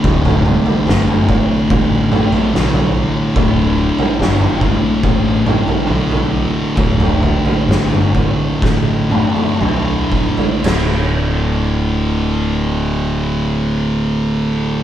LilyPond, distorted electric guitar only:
\new Staff \with { instrumentName = "Distorted electric guitar" } { \clef bass \time 4/4 \key c \major \tempo 4 = 67 <d, a, d>2~ <d, a, d>8 <d, a, d>8 <d, a, d>4 | <d, a, d>2~ <d, a, d>8 <d, a, d>8 <d, a, d>4 | <d, a, d>2~ <d, a, d>8 <d, a, d>8 <d, a, d>4 | <d, a, d>1 | }